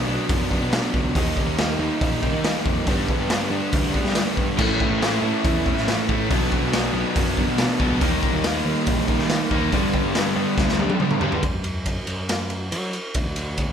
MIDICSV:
0, 0, Header, 1, 5, 480
1, 0, Start_track
1, 0, Tempo, 428571
1, 1294, Time_signature, 4, 2, 24, 8
1, 15372, End_track
2, 0, Start_track
2, 0, Title_t, "Overdriven electric guitar"
2, 0, Program_c, 0, 29
2, 0, Note_on_c, 0, 47, 75
2, 74, Note_on_c, 0, 62, 73
2, 90, Note_on_c, 0, 59, 69
2, 100, Note_on_c, 0, 54, 64
2, 326, Note_off_c, 0, 47, 0
2, 551, Note_off_c, 0, 62, 0
2, 563, Note_off_c, 0, 59, 0
2, 565, Note_on_c, 0, 62, 87
2, 574, Note_off_c, 0, 54, 0
2, 576, Note_on_c, 0, 59, 71
2, 588, Note_on_c, 0, 54, 72
2, 801, Note_off_c, 0, 54, 0
2, 808, Note_on_c, 0, 47, 85
2, 814, Note_off_c, 0, 59, 0
2, 814, Note_off_c, 0, 62, 0
2, 815, Note_on_c, 0, 54, 105
2, 827, Note_on_c, 0, 59, 106
2, 827, Note_on_c, 0, 62, 108
2, 1276, Note_off_c, 0, 47, 0
2, 1280, Note_off_c, 0, 54, 0
2, 1286, Note_off_c, 0, 59, 0
2, 1286, Note_off_c, 0, 62, 0
2, 1292, Note_on_c, 0, 51, 98
2, 1299, Note_on_c, 0, 55, 102
2, 1306, Note_on_c, 0, 58, 109
2, 1313, Note_on_c, 0, 63, 123
2, 1755, Note_off_c, 0, 51, 0
2, 1769, Note_on_c, 0, 51, 85
2, 1772, Note_off_c, 0, 58, 0
2, 1774, Note_off_c, 0, 55, 0
2, 1776, Note_off_c, 0, 63, 0
2, 1778, Note_on_c, 0, 55, 81
2, 1785, Note_on_c, 0, 58, 79
2, 1790, Note_on_c, 0, 63, 90
2, 1997, Note_off_c, 0, 63, 0
2, 2009, Note_off_c, 0, 58, 0
2, 2010, Note_on_c, 0, 63, 79
2, 2023, Note_on_c, 0, 58, 64
2, 2032, Note_off_c, 0, 55, 0
2, 2036, Note_on_c, 0, 55, 67
2, 2251, Note_off_c, 0, 51, 0
2, 2471, Note_off_c, 0, 63, 0
2, 2485, Note_on_c, 0, 63, 87
2, 2489, Note_off_c, 0, 58, 0
2, 2502, Note_off_c, 0, 55, 0
2, 2502, Note_on_c, 0, 58, 85
2, 2515, Note_on_c, 0, 55, 64
2, 2727, Note_off_c, 0, 55, 0
2, 2735, Note_on_c, 0, 51, 101
2, 2738, Note_off_c, 0, 58, 0
2, 2740, Note_on_c, 0, 55, 104
2, 2743, Note_off_c, 0, 63, 0
2, 2751, Note_on_c, 0, 58, 106
2, 2757, Note_on_c, 0, 63, 98
2, 3200, Note_off_c, 0, 51, 0
2, 3202, Note_off_c, 0, 55, 0
2, 3208, Note_off_c, 0, 58, 0
2, 3210, Note_off_c, 0, 63, 0
2, 3216, Note_on_c, 0, 43, 91
2, 3227, Note_on_c, 0, 50, 93
2, 3235, Note_on_c, 0, 55, 100
2, 3235, Note_on_c, 0, 59, 111
2, 3244, Note_on_c, 0, 62, 107
2, 3684, Note_off_c, 0, 50, 0
2, 3690, Note_off_c, 0, 55, 0
2, 3696, Note_off_c, 0, 59, 0
2, 3697, Note_on_c, 0, 50, 75
2, 3703, Note_on_c, 0, 55, 75
2, 3706, Note_off_c, 0, 62, 0
2, 3710, Note_on_c, 0, 59, 87
2, 3720, Note_on_c, 0, 62, 87
2, 3915, Note_off_c, 0, 62, 0
2, 3929, Note_on_c, 0, 62, 83
2, 3934, Note_off_c, 0, 43, 0
2, 3934, Note_off_c, 0, 59, 0
2, 3941, Note_off_c, 0, 55, 0
2, 3947, Note_on_c, 0, 59, 59
2, 3954, Note_on_c, 0, 55, 56
2, 4175, Note_off_c, 0, 50, 0
2, 4403, Note_off_c, 0, 62, 0
2, 4414, Note_off_c, 0, 59, 0
2, 4417, Note_on_c, 0, 62, 79
2, 4424, Note_off_c, 0, 55, 0
2, 4427, Note_on_c, 0, 59, 74
2, 4437, Note_on_c, 0, 55, 72
2, 4647, Note_on_c, 0, 43, 91
2, 4649, Note_off_c, 0, 55, 0
2, 4656, Note_off_c, 0, 59, 0
2, 4656, Note_on_c, 0, 50, 100
2, 4660, Note_off_c, 0, 62, 0
2, 4663, Note_on_c, 0, 55, 95
2, 4670, Note_on_c, 0, 59, 99
2, 4674, Note_on_c, 0, 62, 99
2, 5115, Note_off_c, 0, 43, 0
2, 5119, Note_off_c, 0, 50, 0
2, 5123, Note_off_c, 0, 55, 0
2, 5126, Note_off_c, 0, 59, 0
2, 5128, Note_off_c, 0, 62, 0
2, 5132, Note_on_c, 0, 45, 108
2, 5142, Note_on_c, 0, 52, 91
2, 5147, Note_on_c, 0, 57, 91
2, 5152, Note_on_c, 0, 61, 115
2, 5159, Note_on_c, 0, 64, 97
2, 5594, Note_off_c, 0, 52, 0
2, 5598, Note_off_c, 0, 57, 0
2, 5608, Note_off_c, 0, 61, 0
2, 5608, Note_on_c, 0, 52, 84
2, 5611, Note_on_c, 0, 57, 79
2, 5614, Note_off_c, 0, 64, 0
2, 5621, Note_on_c, 0, 61, 90
2, 5627, Note_on_c, 0, 64, 92
2, 5844, Note_off_c, 0, 64, 0
2, 5851, Note_off_c, 0, 45, 0
2, 5857, Note_on_c, 0, 64, 82
2, 5859, Note_off_c, 0, 61, 0
2, 5869, Note_off_c, 0, 57, 0
2, 5873, Note_on_c, 0, 61, 75
2, 5882, Note_on_c, 0, 57, 60
2, 6089, Note_off_c, 0, 52, 0
2, 6334, Note_off_c, 0, 64, 0
2, 6347, Note_on_c, 0, 64, 76
2, 6352, Note_off_c, 0, 61, 0
2, 6360, Note_off_c, 0, 57, 0
2, 6365, Note_on_c, 0, 61, 68
2, 6373, Note_on_c, 0, 57, 68
2, 6581, Note_on_c, 0, 45, 85
2, 6583, Note_off_c, 0, 57, 0
2, 6590, Note_off_c, 0, 61, 0
2, 6593, Note_off_c, 0, 64, 0
2, 6593, Note_on_c, 0, 52, 94
2, 6596, Note_on_c, 0, 57, 101
2, 6603, Note_on_c, 0, 61, 96
2, 6606, Note_on_c, 0, 64, 97
2, 7041, Note_off_c, 0, 45, 0
2, 7047, Note_off_c, 0, 52, 0
2, 7048, Note_off_c, 0, 57, 0
2, 7052, Note_off_c, 0, 61, 0
2, 7053, Note_off_c, 0, 64, 0
2, 7055, Note_on_c, 0, 47, 95
2, 7067, Note_on_c, 0, 54, 103
2, 7072, Note_on_c, 0, 59, 102
2, 7081, Note_on_c, 0, 62, 97
2, 7521, Note_off_c, 0, 47, 0
2, 7528, Note_off_c, 0, 54, 0
2, 7534, Note_on_c, 0, 47, 76
2, 7537, Note_off_c, 0, 59, 0
2, 7541, Note_on_c, 0, 54, 94
2, 7545, Note_off_c, 0, 62, 0
2, 7551, Note_on_c, 0, 59, 87
2, 7559, Note_on_c, 0, 62, 97
2, 7763, Note_off_c, 0, 62, 0
2, 7772, Note_off_c, 0, 59, 0
2, 7777, Note_on_c, 0, 62, 69
2, 7786, Note_on_c, 0, 59, 75
2, 7788, Note_off_c, 0, 54, 0
2, 7801, Note_on_c, 0, 54, 53
2, 8011, Note_off_c, 0, 47, 0
2, 8241, Note_off_c, 0, 62, 0
2, 8254, Note_off_c, 0, 59, 0
2, 8254, Note_on_c, 0, 62, 88
2, 8263, Note_off_c, 0, 54, 0
2, 8268, Note_on_c, 0, 59, 79
2, 8277, Note_on_c, 0, 54, 63
2, 8494, Note_off_c, 0, 54, 0
2, 8495, Note_on_c, 0, 47, 98
2, 8500, Note_off_c, 0, 59, 0
2, 8507, Note_on_c, 0, 54, 97
2, 8508, Note_off_c, 0, 62, 0
2, 8513, Note_on_c, 0, 59, 95
2, 8522, Note_on_c, 0, 62, 105
2, 8956, Note_off_c, 0, 47, 0
2, 8962, Note_off_c, 0, 54, 0
2, 8965, Note_off_c, 0, 59, 0
2, 8969, Note_off_c, 0, 62, 0
2, 8975, Note_on_c, 0, 51, 96
2, 8980, Note_on_c, 0, 55, 96
2, 8986, Note_on_c, 0, 58, 100
2, 8999, Note_on_c, 0, 63, 108
2, 9448, Note_off_c, 0, 51, 0
2, 9461, Note_on_c, 0, 51, 82
2, 9464, Note_off_c, 0, 58, 0
2, 9465, Note_off_c, 0, 55, 0
2, 9466, Note_off_c, 0, 63, 0
2, 9469, Note_on_c, 0, 55, 78
2, 9478, Note_on_c, 0, 58, 88
2, 9479, Note_on_c, 0, 63, 81
2, 9673, Note_off_c, 0, 63, 0
2, 9686, Note_off_c, 0, 58, 0
2, 9686, Note_on_c, 0, 63, 67
2, 9700, Note_on_c, 0, 58, 73
2, 9707, Note_off_c, 0, 55, 0
2, 9712, Note_on_c, 0, 55, 59
2, 9932, Note_off_c, 0, 51, 0
2, 10159, Note_off_c, 0, 63, 0
2, 10168, Note_off_c, 0, 58, 0
2, 10172, Note_on_c, 0, 63, 80
2, 10180, Note_off_c, 0, 55, 0
2, 10182, Note_on_c, 0, 58, 74
2, 10194, Note_on_c, 0, 55, 66
2, 10400, Note_off_c, 0, 55, 0
2, 10400, Note_on_c, 0, 51, 98
2, 10406, Note_off_c, 0, 58, 0
2, 10413, Note_on_c, 0, 55, 94
2, 10414, Note_off_c, 0, 63, 0
2, 10420, Note_on_c, 0, 58, 96
2, 10428, Note_on_c, 0, 63, 97
2, 10866, Note_off_c, 0, 51, 0
2, 10873, Note_off_c, 0, 55, 0
2, 10876, Note_off_c, 0, 58, 0
2, 10880, Note_off_c, 0, 63, 0
2, 10880, Note_on_c, 0, 43, 104
2, 10888, Note_on_c, 0, 50, 103
2, 10896, Note_on_c, 0, 55, 103
2, 10902, Note_on_c, 0, 59, 103
2, 10909, Note_on_c, 0, 62, 103
2, 11352, Note_off_c, 0, 50, 0
2, 11358, Note_off_c, 0, 55, 0
2, 11366, Note_on_c, 0, 50, 70
2, 11370, Note_off_c, 0, 59, 0
2, 11371, Note_on_c, 0, 55, 85
2, 11372, Note_off_c, 0, 62, 0
2, 11383, Note_on_c, 0, 59, 77
2, 11386, Note_on_c, 0, 62, 81
2, 11580, Note_off_c, 0, 62, 0
2, 11590, Note_off_c, 0, 59, 0
2, 11593, Note_on_c, 0, 62, 78
2, 11600, Note_off_c, 0, 55, 0
2, 11601, Note_off_c, 0, 43, 0
2, 11603, Note_on_c, 0, 59, 73
2, 11614, Note_on_c, 0, 55, 61
2, 11844, Note_off_c, 0, 50, 0
2, 12072, Note_off_c, 0, 62, 0
2, 12083, Note_off_c, 0, 59, 0
2, 12086, Note_on_c, 0, 62, 90
2, 12097, Note_on_c, 0, 59, 70
2, 12098, Note_off_c, 0, 55, 0
2, 12111, Note_on_c, 0, 55, 64
2, 12321, Note_on_c, 0, 43, 86
2, 12323, Note_off_c, 0, 55, 0
2, 12331, Note_on_c, 0, 50, 104
2, 12332, Note_off_c, 0, 59, 0
2, 12334, Note_off_c, 0, 62, 0
2, 12337, Note_on_c, 0, 55, 91
2, 12346, Note_on_c, 0, 59, 102
2, 12348, Note_on_c, 0, 62, 106
2, 12789, Note_off_c, 0, 43, 0
2, 12793, Note_off_c, 0, 50, 0
2, 12796, Note_off_c, 0, 55, 0
2, 12801, Note_off_c, 0, 59, 0
2, 12802, Note_off_c, 0, 62, 0
2, 15372, End_track
3, 0, Start_track
3, 0, Title_t, "Overdriven electric guitar"
3, 0, Program_c, 1, 29
3, 6817, Note_on_c, 1, 57, 95
3, 6833, Note_on_c, 1, 52, 76
3, 6839, Note_on_c, 1, 45, 84
3, 7039, Note_off_c, 1, 57, 0
3, 7046, Note_off_c, 1, 52, 0
3, 7047, Note_off_c, 1, 45, 0
3, 8736, Note_on_c, 1, 59, 88
3, 8751, Note_on_c, 1, 54, 84
3, 8759, Note_on_c, 1, 47, 87
3, 8956, Note_off_c, 1, 59, 0
3, 8964, Note_off_c, 1, 54, 0
3, 8968, Note_off_c, 1, 47, 0
3, 10651, Note_on_c, 1, 63, 99
3, 10667, Note_on_c, 1, 58, 82
3, 10685, Note_on_c, 1, 51, 72
3, 10872, Note_off_c, 1, 63, 0
3, 10880, Note_off_c, 1, 58, 0
3, 10889, Note_off_c, 1, 51, 0
3, 12556, Note_on_c, 1, 55, 87
3, 12569, Note_on_c, 1, 50, 86
3, 12581, Note_on_c, 1, 43, 77
3, 12786, Note_off_c, 1, 55, 0
3, 12792, Note_off_c, 1, 50, 0
3, 12798, Note_off_c, 1, 43, 0
3, 15372, End_track
4, 0, Start_track
4, 0, Title_t, "Picked electric bass"
4, 0, Program_c, 2, 34
4, 86, Note_on_c, 2, 35, 100
4, 192, Note_off_c, 2, 35, 0
4, 330, Note_on_c, 2, 42, 109
4, 642, Note_off_c, 2, 42, 0
4, 681, Note_on_c, 2, 47, 107
4, 893, Note_off_c, 2, 47, 0
4, 1053, Note_on_c, 2, 37, 86
4, 1260, Note_off_c, 2, 37, 0
4, 1290, Note_on_c, 2, 39, 97
4, 1498, Note_off_c, 2, 39, 0
4, 1635, Note_on_c, 2, 39, 80
4, 1954, Note_off_c, 2, 39, 0
4, 2004, Note_on_c, 2, 39, 110
4, 2112, Note_off_c, 2, 39, 0
4, 2252, Note_on_c, 2, 34, 100
4, 2563, Note_off_c, 2, 34, 0
4, 2596, Note_on_c, 2, 51, 109
4, 2811, Note_off_c, 2, 51, 0
4, 2975, Note_on_c, 2, 41, 88
4, 3181, Note_off_c, 2, 41, 0
4, 3217, Note_on_c, 2, 43, 101
4, 3422, Note_off_c, 2, 43, 0
4, 3574, Note_on_c, 2, 43, 88
4, 3884, Note_off_c, 2, 43, 0
4, 3923, Note_on_c, 2, 43, 98
4, 4031, Note_off_c, 2, 43, 0
4, 4175, Note_on_c, 2, 38, 101
4, 4484, Note_off_c, 2, 38, 0
4, 4529, Note_on_c, 2, 55, 107
4, 4737, Note_off_c, 2, 55, 0
4, 4896, Note_on_c, 2, 43, 87
4, 5101, Note_off_c, 2, 43, 0
4, 5136, Note_on_c, 2, 45, 103
4, 5341, Note_off_c, 2, 45, 0
4, 5484, Note_on_c, 2, 45, 85
4, 5798, Note_off_c, 2, 45, 0
4, 5844, Note_on_c, 2, 45, 91
4, 5950, Note_off_c, 2, 45, 0
4, 6098, Note_on_c, 2, 40, 96
4, 6405, Note_off_c, 2, 40, 0
4, 6448, Note_on_c, 2, 45, 103
4, 6656, Note_off_c, 2, 45, 0
4, 6819, Note_on_c, 2, 45, 81
4, 7022, Note_off_c, 2, 45, 0
4, 7061, Note_on_c, 2, 35, 97
4, 7263, Note_off_c, 2, 35, 0
4, 7408, Note_on_c, 2, 35, 83
4, 7718, Note_off_c, 2, 35, 0
4, 7766, Note_on_c, 2, 35, 98
4, 7870, Note_off_c, 2, 35, 0
4, 8019, Note_on_c, 2, 42, 102
4, 8324, Note_off_c, 2, 42, 0
4, 8361, Note_on_c, 2, 47, 98
4, 8570, Note_off_c, 2, 47, 0
4, 8732, Note_on_c, 2, 37, 75
4, 8936, Note_off_c, 2, 37, 0
4, 8975, Note_on_c, 2, 39, 105
4, 9178, Note_off_c, 2, 39, 0
4, 9336, Note_on_c, 2, 39, 100
4, 9642, Note_off_c, 2, 39, 0
4, 9685, Note_on_c, 2, 39, 100
4, 9788, Note_off_c, 2, 39, 0
4, 9936, Note_on_c, 2, 34, 106
4, 10241, Note_off_c, 2, 34, 0
4, 10290, Note_on_c, 2, 51, 106
4, 10494, Note_off_c, 2, 51, 0
4, 10648, Note_on_c, 2, 39, 91
4, 10853, Note_off_c, 2, 39, 0
4, 10886, Note_on_c, 2, 43, 93
4, 11091, Note_off_c, 2, 43, 0
4, 11249, Note_on_c, 2, 43, 95
4, 11557, Note_off_c, 2, 43, 0
4, 11607, Note_on_c, 2, 43, 97
4, 11708, Note_off_c, 2, 43, 0
4, 11844, Note_on_c, 2, 38, 100
4, 12154, Note_off_c, 2, 38, 0
4, 12206, Note_on_c, 2, 55, 103
4, 12412, Note_off_c, 2, 55, 0
4, 12564, Note_on_c, 2, 43, 76
4, 12771, Note_off_c, 2, 43, 0
4, 12798, Note_on_c, 2, 42, 86
4, 13424, Note_off_c, 2, 42, 0
4, 13521, Note_on_c, 2, 42, 80
4, 14242, Note_on_c, 2, 54, 92
4, 14259, Note_off_c, 2, 42, 0
4, 14453, Note_off_c, 2, 54, 0
4, 14729, Note_on_c, 2, 38, 89
4, 15355, Note_off_c, 2, 38, 0
4, 15372, End_track
5, 0, Start_track
5, 0, Title_t, "Drums"
5, 328, Note_on_c, 9, 46, 66
5, 330, Note_on_c, 9, 36, 127
5, 440, Note_off_c, 9, 46, 0
5, 442, Note_off_c, 9, 36, 0
5, 573, Note_on_c, 9, 36, 71
5, 685, Note_off_c, 9, 36, 0
5, 811, Note_on_c, 9, 46, 58
5, 816, Note_on_c, 9, 38, 106
5, 923, Note_off_c, 9, 46, 0
5, 928, Note_off_c, 9, 38, 0
5, 1052, Note_on_c, 9, 36, 90
5, 1164, Note_off_c, 9, 36, 0
5, 1291, Note_on_c, 9, 36, 121
5, 1294, Note_on_c, 9, 46, 64
5, 1403, Note_off_c, 9, 36, 0
5, 1406, Note_off_c, 9, 46, 0
5, 1532, Note_on_c, 9, 36, 82
5, 1644, Note_off_c, 9, 36, 0
5, 1771, Note_on_c, 9, 46, 57
5, 1777, Note_on_c, 9, 38, 114
5, 1883, Note_off_c, 9, 46, 0
5, 1889, Note_off_c, 9, 38, 0
5, 2255, Note_on_c, 9, 36, 126
5, 2256, Note_on_c, 9, 46, 60
5, 2367, Note_off_c, 9, 36, 0
5, 2368, Note_off_c, 9, 46, 0
5, 2496, Note_on_c, 9, 36, 84
5, 2608, Note_off_c, 9, 36, 0
5, 2733, Note_on_c, 9, 46, 60
5, 2738, Note_on_c, 9, 38, 102
5, 2845, Note_off_c, 9, 46, 0
5, 2850, Note_off_c, 9, 38, 0
5, 2975, Note_on_c, 9, 36, 90
5, 3087, Note_off_c, 9, 36, 0
5, 3209, Note_on_c, 9, 46, 63
5, 3214, Note_on_c, 9, 36, 110
5, 3321, Note_off_c, 9, 46, 0
5, 3326, Note_off_c, 9, 36, 0
5, 3455, Note_on_c, 9, 36, 89
5, 3567, Note_off_c, 9, 36, 0
5, 3692, Note_on_c, 9, 46, 61
5, 3697, Note_on_c, 9, 38, 107
5, 3804, Note_off_c, 9, 46, 0
5, 3809, Note_off_c, 9, 38, 0
5, 4171, Note_on_c, 9, 46, 62
5, 4177, Note_on_c, 9, 36, 116
5, 4283, Note_off_c, 9, 46, 0
5, 4289, Note_off_c, 9, 36, 0
5, 4415, Note_on_c, 9, 36, 76
5, 4527, Note_off_c, 9, 36, 0
5, 4543, Note_on_c, 9, 38, 37
5, 4646, Note_on_c, 9, 46, 57
5, 4651, Note_off_c, 9, 38, 0
5, 4651, Note_on_c, 9, 38, 109
5, 4758, Note_off_c, 9, 46, 0
5, 4763, Note_off_c, 9, 38, 0
5, 4898, Note_on_c, 9, 36, 92
5, 5010, Note_off_c, 9, 36, 0
5, 5134, Note_on_c, 9, 49, 104
5, 5138, Note_on_c, 9, 36, 106
5, 5246, Note_off_c, 9, 49, 0
5, 5250, Note_off_c, 9, 36, 0
5, 5379, Note_on_c, 9, 36, 85
5, 5491, Note_off_c, 9, 36, 0
5, 5623, Note_on_c, 9, 46, 55
5, 5629, Note_on_c, 9, 38, 99
5, 5735, Note_off_c, 9, 46, 0
5, 5741, Note_off_c, 9, 38, 0
5, 6098, Note_on_c, 9, 46, 62
5, 6100, Note_on_c, 9, 36, 116
5, 6210, Note_off_c, 9, 46, 0
5, 6212, Note_off_c, 9, 36, 0
5, 6339, Note_on_c, 9, 36, 83
5, 6451, Note_off_c, 9, 36, 0
5, 6465, Note_on_c, 9, 38, 36
5, 6577, Note_off_c, 9, 38, 0
5, 6582, Note_on_c, 9, 46, 53
5, 6587, Note_on_c, 9, 38, 102
5, 6694, Note_off_c, 9, 46, 0
5, 6699, Note_off_c, 9, 38, 0
5, 6821, Note_on_c, 9, 36, 89
5, 6933, Note_off_c, 9, 36, 0
5, 7064, Note_on_c, 9, 36, 127
5, 7070, Note_on_c, 9, 46, 68
5, 7176, Note_off_c, 9, 36, 0
5, 7182, Note_off_c, 9, 46, 0
5, 7302, Note_on_c, 9, 36, 82
5, 7414, Note_off_c, 9, 36, 0
5, 7538, Note_on_c, 9, 46, 54
5, 7543, Note_on_c, 9, 38, 115
5, 7650, Note_off_c, 9, 46, 0
5, 7655, Note_off_c, 9, 38, 0
5, 8015, Note_on_c, 9, 46, 67
5, 8018, Note_on_c, 9, 36, 117
5, 8127, Note_off_c, 9, 46, 0
5, 8130, Note_off_c, 9, 36, 0
5, 8258, Note_on_c, 9, 36, 80
5, 8370, Note_off_c, 9, 36, 0
5, 8489, Note_on_c, 9, 46, 62
5, 8495, Note_on_c, 9, 38, 108
5, 8601, Note_off_c, 9, 46, 0
5, 8607, Note_off_c, 9, 38, 0
5, 8734, Note_on_c, 9, 36, 91
5, 8846, Note_off_c, 9, 36, 0
5, 8972, Note_on_c, 9, 46, 64
5, 8975, Note_on_c, 9, 36, 124
5, 9084, Note_off_c, 9, 46, 0
5, 9087, Note_off_c, 9, 36, 0
5, 9216, Note_on_c, 9, 36, 93
5, 9328, Note_off_c, 9, 36, 0
5, 9450, Note_on_c, 9, 46, 63
5, 9456, Note_on_c, 9, 38, 99
5, 9562, Note_off_c, 9, 46, 0
5, 9568, Note_off_c, 9, 38, 0
5, 9927, Note_on_c, 9, 46, 67
5, 9935, Note_on_c, 9, 36, 126
5, 10039, Note_off_c, 9, 46, 0
5, 10047, Note_off_c, 9, 36, 0
5, 10173, Note_on_c, 9, 36, 84
5, 10285, Note_off_c, 9, 36, 0
5, 10291, Note_on_c, 9, 38, 38
5, 10403, Note_off_c, 9, 38, 0
5, 10407, Note_on_c, 9, 46, 58
5, 10413, Note_on_c, 9, 38, 110
5, 10519, Note_off_c, 9, 46, 0
5, 10525, Note_off_c, 9, 38, 0
5, 10652, Note_on_c, 9, 36, 90
5, 10764, Note_off_c, 9, 36, 0
5, 10891, Note_on_c, 9, 36, 104
5, 10891, Note_on_c, 9, 46, 62
5, 11003, Note_off_c, 9, 36, 0
5, 11003, Note_off_c, 9, 46, 0
5, 11128, Note_on_c, 9, 36, 87
5, 11240, Note_off_c, 9, 36, 0
5, 11365, Note_on_c, 9, 46, 57
5, 11371, Note_on_c, 9, 38, 104
5, 11477, Note_off_c, 9, 46, 0
5, 11483, Note_off_c, 9, 38, 0
5, 11846, Note_on_c, 9, 36, 120
5, 11849, Note_on_c, 9, 38, 78
5, 11958, Note_off_c, 9, 36, 0
5, 11961, Note_off_c, 9, 38, 0
5, 11971, Note_on_c, 9, 38, 68
5, 12083, Note_off_c, 9, 38, 0
5, 12088, Note_on_c, 9, 48, 75
5, 12200, Note_off_c, 9, 48, 0
5, 12204, Note_on_c, 9, 48, 79
5, 12316, Note_off_c, 9, 48, 0
5, 12319, Note_on_c, 9, 47, 80
5, 12431, Note_off_c, 9, 47, 0
5, 12439, Note_on_c, 9, 45, 86
5, 12551, Note_off_c, 9, 45, 0
5, 12554, Note_on_c, 9, 43, 98
5, 12666, Note_off_c, 9, 43, 0
5, 12680, Note_on_c, 9, 43, 94
5, 12792, Note_off_c, 9, 43, 0
5, 12799, Note_on_c, 9, 51, 87
5, 12800, Note_on_c, 9, 36, 97
5, 12911, Note_off_c, 9, 51, 0
5, 12912, Note_off_c, 9, 36, 0
5, 13035, Note_on_c, 9, 51, 63
5, 13147, Note_off_c, 9, 51, 0
5, 13278, Note_on_c, 9, 51, 75
5, 13281, Note_on_c, 9, 36, 67
5, 13390, Note_off_c, 9, 51, 0
5, 13393, Note_off_c, 9, 36, 0
5, 13518, Note_on_c, 9, 51, 63
5, 13630, Note_off_c, 9, 51, 0
5, 13764, Note_on_c, 9, 51, 86
5, 13770, Note_on_c, 9, 38, 116
5, 13876, Note_off_c, 9, 51, 0
5, 13882, Note_off_c, 9, 38, 0
5, 13998, Note_on_c, 9, 51, 60
5, 14110, Note_off_c, 9, 51, 0
5, 14246, Note_on_c, 9, 51, 84
5, 14358, Note_off_c, 9, 51, 0
5, 14483, Note_on_c, 9, 51, 52
5, 14595, Note_off_c, 9, 51, 0
5, 14720, Note_on_c, 9, 51, 82
5, 14728, Note_on_c, 9, 36, 106
5, 14832, Note_off_c, 9, 51, 0
5, 14840, Note_off_c, 9, 36, 0
5, 14962, Note_on_c, 9, 51, 60
5, 15074, Note_off_c, 9, 51, 0
5, 15204, Note_on_c, 9, 51, 73
5, 15210, Note_on_c, 9, 36, 76
5, 15316, Note_off_c, 9, 51, 0
5, 15322, Note_off_c, 9, 36, 0
5, 15372, End_track
0, 0, End_of_file